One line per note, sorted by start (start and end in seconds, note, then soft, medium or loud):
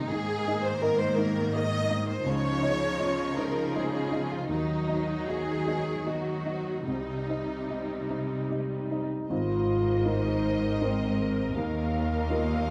0.00 0.11 D#4 medium
0.00 0.13 D#4 soft
0.00 0.13 G4 soft
0.00 0.14 D#5 soft
0.10 2.22 G#2 medium
0.10 2.23 G#2 medium
0.10 2.23 D#3 medium
0.10 2.22 A#3 soft
0.10 0.65 G#4 medium
0.48 0.80 D#4 soft
0.48 0.80 D#5 soft
0.65 0.83 C5 medium
0.82 1.15 A#4 soft
0.82 1.00 A#4 medium
0.82 1.15 D#5 soft
1.00 1.18 C5 medium
1.17 1.50 D#4 soft
1.17 1.54 A#4 medium
1.17 1.50 D#5 soft
1.54 1.87 A#4 soft
1.54 2.08 D#5 medium
1.54 1.87 D#5 soft
1.90 2.23 D#4 soft
1.90 2.23 D#5 soft
2.09 2.26 C5 medium
2.25 4.46 C#2 soft
2.25 4.46 C#3 medium
2.25 4.46 F3 soft
2.25 4.46 D#4 soft
2.25 3.39 C#5 medium
2.62 2.96 D#4 soft
2.62 2.97 D#5 soft
2.99 3.34 F4 soft
2.99 3.34 D#5 soft
3.37 3.71 D#4 soft
3.37 3.76 A#4 medium
3.37 3.72 D#5 soft
3.76 4.09 F4 soft
3.76 4.32 G#4 medium
3.76 4.09 D#5 soft
4.11 4.46 D#4 soft
4.11 4.46 D#5 soft
4.32 4.50 F4 medium
4.49 6.84 D#2 soft
4.49 6.84 D#3 soft
4.49 6.03 F#3 soft
4.49 6.03 D#4 soft
4.49 5.28 D#4 medium
4.88 5.25 D#4 soft
4.88 5.25 D#5 soft
5.28 5.64 F#4 soft
5.28 6.08 G#4 medium
5.28 5.64 D#5 soft
5.67 6.03 D#4 soft
5.67 6.03 D#5 soft
6.06 6.87 F#3 soft
6.06 6.87 D#4 soft
6.06 6.43 F#4 soft
6.06 6.89 F#4 soft
6.06 6.43 D#5 soft
6.45 6.84 D#4 soft
6.45 6.84 D#5 soft
6.87 9.26 C2 soft
6.87 9.10 C3 soft
6.87 9.06 G3 soft
6.87 8.47 D#4 soft
6.87 9.06 D#4 soft
7.30 7.66 D#4 soft
7.30 7.66 D#5 soft
7.70 8.06 G4 soft
7.70 8.06 D#5 soft
8.10 8.46 D#4 soft
8.10 8.47 D#5 soft
8.49 9.26 D#4 soft
8.49 8.87 G4 soft
8.49 8.88 D#5 soft
8.91 9.27 D#4 soft
8.91 9.27 D#5 soft
9.29 11.52 G#1 soft
9.29 11.52 G#2 soft
9.29 10.06 F4 medium
9.29 12.70 A#4 soft
9.29 11.52 C5 medium
9.29 11.52 D#5 soft
10.05 10.77 D#4 soft
10.05 10.82 D#4 medium
10.05 10.78 A#4 soft
10.05 10.78 C5 soft
10.81 11.57 C4 medium
10.81 11.52 D#4 soft
10.81 11.52 A#4 soft
10.81 11.52 C5 soft
11.56 12.70 D#2 soft
11.56 12.70 D#2 medium
11.56 12.70 D#2 soft
11.56 12.70 D#3 soft
11.56 12.70 A#3 medium
11.56 12.70 D#5 medium
11.56 12.70 F5 soft
12.30 12.70 D#4 soft
12.30 12.70 F4 soft
12.30 12.70 A#4 soft